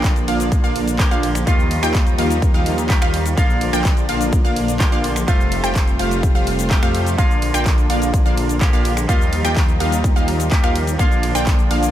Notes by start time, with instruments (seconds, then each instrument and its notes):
Already playing: detuned saw bass A#1, clean electric guitar D3 F3 A#3 F4, string section F3 A#3 D4, supersaw synth A#3 D4 F4 D5 G5, synth pluck G5
0.04 kick, clap, closed hi-hat, shaker
0.16 closed hi-hat, shaker
0.28 detuned saw bass A#1, supersaw synth A#3 D4 F4 D5 F5, synth pluck F5, open hi-hat, ride
0.40 closed hi-hat, shaker
0.52 kick, closed hi-hat, shaker
0.64 detuned saw bass A#1, supersaw synth A#3 D4 F4 D5 F5, synth pluck F5, shaker
0.76 open hi-hat, ride
0.88 closed hi-hat, shaker
0.99 clean electric guitar D3 F3 A#3 G4, kick, clap, closed hi-hat, shaker
1.11 detuned saw bass A#1, supersaw synth A#3 D4 F4 D5 F5, synth pluck F5, closed hi-hat, shaker
1.23 open hi-hat, ride
1.35 finger snap, closed hi-hat, shaker
1.46 detuned saw bass D#2, clean electric guitar D#3 G3 A#3 F4, string section G3 D#4, supersaw synth A#3 F4 G4 D#5 F5, synth pluck F5, kick, closed hi-hat, shaker
1.60 shaker
1.71 open hi-hat, ride
1.83 detuned saw bass D#2, supersaw synth A#3 F4 G4 D#5 G5, synth pluck G5, finger snap, closed hi-hat, shaker
1.95 kick, clap, closed hi-hat, shaker
2.07 closed hi-hat, shaker
2.18 detuned saw bass D#2, supersaw synth A#3 F4 G4 D#5 F5, synth pluck F5, open hi-hat, ride
2.30 closed hi-hat, shaker
2.42 kick, closed hi-hat, shaker
2.54 detuned saw bass D#2, supersaw synth A#3 F4 G4 D#5 F5, synth pluck F5, shaker
2.66 open hi-hat, ride
2.78 closed hi-hat, shaker
2.89 clean electric guitar D#3 G3 A#3 G4, kick, clap, closed hi-hat, shaker
3.02 detuned saw bass D#2, supersaw synth A#3 F4 G4 D#5 F5, synth pluck F5, finger snap, closed hi-hat, shaker
3.14 open hi-hat, ride
3.26 closed hi-hat, shaker
3.36 detuned saw bass A#1, clean electric guitar D3 F3 A#3 F4, supersaw synth A#3 D4 F4 D5 F5, string section A#3 D4, synth pluck F5, kick, closed hi-hat, shaker
3.50 shaker
3.61 open hi-hat, ride
3.73 detuned saw bass A#1, supersaw synth A#3 D4 F4 D5 G5, synth pluck G5, finger snap, closed hi-hat, shaker
3.85 kick, clap, closed hi-hat, shaker
3.97 closed hi-hat, shaker
4.09 detuned saw bass A#1, supersaw synth A#3 D4 F4 D5 F5, synth pluck F5, open hi-hat, ride
4.21 closed hi-hat, shaker
4.33 kick, closed hi-hat, shaker
4.45 detuned saw bass A#1, supersaw synth A#3 D4 F4 D5 F5, synth pluck F5, shaker
4.56 open hi-hat, ride
4.68 closed hi-hat, shaker
4.80 clean electric guitar D3 F3 A#3 G4, kick, clap, closed hi-hat, shaker
4.92 detuned saw bass A#1, supersaw synth A#3 D4 F4 D5 F5, synth pluck F5, closed hi-hat, shaker
5.04 open hi-hat, ride
5.16 finger snap, closed hi-hat, shaker
5.27 detuned saw bass F1, clean electric guitar C3 G3 A3 F4, string section G3 A3 F4, supersaw synth A3 F4 G4 C5 F5, synth pluck F5, kick, closed hi-hat, shaker
5.40 shaker
5.52 open hi-hat, ride
5.64 detuned saw bass F1, supersaw synth A3 F4 G4 C5 G5, synth pluck G5, finger snap, closed hi-hat, shaker
5.76 kick, clap, closed hi-hat, shaker
5.88 closed hi-hat, shaker
5.99 detuned saw bass F1, supersaw synth A3 F4 G4 C5 F5, synth pluck F5, open hi-hat, ride
6.11 closed hi-hat, shaker
6.23 kick, closed hi-hat, shaker
6.35 detuned saw bass F1, supersaw synth A3 F4 G4 C5 F5, synth pluck F5, shaker
6.47 open hi-hat, ride
6.59 closed hi-hat, shaker
6.70 clean electric guitar C3 G3 A3 G4, kick, clap, closed hi-hat, shaker
6.83 detuned saw bass F2, supersaw synth A3 F4 G4 C5 F5, synth pluck F5, finger snap, closed hi-hat, shaker
6.95 open hi-hat, ride
7.07 closed hi-hat, shaker
7.17 detuned saw bass A#1, clean electric guitar D3 F3 A#3 F4, string section F3 A#3 D4, supersaw synth A#3 D4 F4 D5 F5, synth pluck F5, kick, closed hi-hat, shaker
7.31 shaker
7.42 open hi-hat, ride
7.54 detuned saw bass A#1, supersaw synth A#3 D4 F4 D5 G5, synth pluck G5, finger snap, closed hi-hat, shaker
7.66 kick, clap, closed hi-hat, shaker
7.78 closed hi-hat, shaker
7.90 detuned saw bass A#1, supersaw synth A#3 D4 F4 D5 F5, synth pluck F5, open hi-hat, ride
8.02 closed hi-hat, shaker
8.14 kick, closed hi-hat, shaker
8.26 detuned saw bass A#1, supersaw synth A#3 D4 F4 D5 F5, synth pluck F5, shaker
8.37 open hi-hat, ride
8.49 closed hi-hat, shaker
8.61 clean electric guitar D3 F3 A#3 G4, kick, clap, closed hi-hat, shaker
8.73 detuned saw bass A#1, supersaw synth A#3 D4 F4 D5 F5, synth pluck F5, closed hi-hat, shaker
8.85 open hi-hat, ride
8.97 finger snap, closed hi-hat, shaker
9.08 detuned saw bass D#2, clean electric guitar D#3 G3 A#3 F4, string section G3 D#4, supersaw synth A#3 F4 G4 D#5 F5, synth pluck F5, kick, closed hi-hat, shaker
9.21 shaker
9.33 open hi-hat, ride
9.45 detuned saw bass D#2, supersaw synth A#3 F4 G4 D#5 G5, synth pluck G5, finger snap, closed hi-hat, shaker
9.57 kick, clap, closed hi-hat, shaker
9.68 closed hi-hat, shaker
9.80 detuned saw bass D#2, supersaw synth A#3 F4 G4 D#5 F5, synth pluck F5, open hi-hat, ride
9.92 closed hi-hat, shaker
10.04 kick, closed hi-hat, shaker
10.16 detuned saw bass D#2, supersaw synth A#3 F4 G4 D#5 F5, synth pluck F5, shaker
10.28 open hi-hat, ride
10.40 closed hi-hat, shaker
10.51 clean electric guitar D#3 G3 A#3 G4, kick, clap, closed hi-hat, shaker
10.64 detuned saw bass D#2, supersaw synth A#3 F4 G4 D#5 F5, synth pluck F5, finger snap, closed hi-hat, shaker
10.76 open hi-hat, ride
10.87 closed hi-hat, shaker
10.98 detuned saw bass A#1, clean electric guitar D3 F3 A#3 F4, supersaw synth A#3 D4 F4 D5 F5, string section A#3 D4, synth pluck F5, kick, closed hi-hat, shaker
11.12 shaker
11.23 open hi-hat, ride
11.35 detuned saw bass A#1, supersaw synth A#3 D4 F4 D5 G5, synth pluck G5, finger snap, closed hi-hat, shaker
11.47 kick, clap, closed hi-hat, shaker
11.59 closed hi-hat, shaker
11.71 detuned saw bass A#1, supersaw synth A#3 D4 F4 D5 F5, synth pluck F5, open hi-hat, ride
11.83 closed hi-hat, shaker